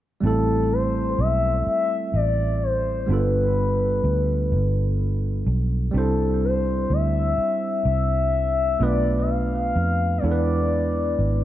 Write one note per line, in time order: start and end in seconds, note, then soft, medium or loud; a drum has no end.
0.21 1.14 A1 medium
0.21 3.03 G3 medium
0.21 3.04 A3 soft
0.21 3.05 C4 medium
0.25 3.06 E4 soft
0.25 0.74 A4 medium
0.25 3.07 A4 medium
0.73 1.21 C5 medium
1.19 1.62 B1 medium
1.19 1.66 E5 medium
1.67 2.11 E5 loud
1.67 muted fingered electric bass stroke soft
2.14 3.05 A1 medium
2.14 2.65 D5 medium
2.63 3.12 C5 medium
3.06 4.00 G1 medium
3.06 5.89 G3 medium
3.06 5.90 B3 soft
3.06 5.91 D4 medium
3.11 5.92 F4 soft
3.11 5.93 A4 medium
3.11 5.00 B4 medium
4.04 4.53 D2 medium
4.52 5.43 G1 medium
5.47 5.90 B1 medium
5.91 6.85 C2 medium
5.91 8.74 G3 medium
5.91 8.75 C4 medium
5.91 8.76 D4 medium
5.96 8.77 E4 medium
5.96 6.46 A4 medium
5.96 8.78 C5 medium
6.44 6.94 C5 medium
6.90 7.33 D2 medium
6.90 7.86 E5 medium
7.38 muted fingered electric bass stroke soft
7.85 8.76 C2 medium
7.85 8.83 E5 medium
8.79 9.71 B1 medium
8.79 10.22 A3 medium
8.79 10.21 B3 medium
8.79 10.22 D4 medium
8.79 10.24 F4 medium
8.79 10.24 B4 medium
8.79 9.23 D5 loud
9.22 9.31 E5 medium
9.30 10.19 F5 medium
9.76 10.19 F2 medium
10.18 11.44 G#3 medium
10.18 10.27 C#5 medium
10.22 11.14 E2 medium
10.22 11.44 B3 medium
10.22 11.44 D4 medium
10.22 11.44 E4 medium
10.22 10.30 A4 soft
10.22 11.31 D5 medium
10.32 11.44 B4 medium
11.19 11.44 G#1 medium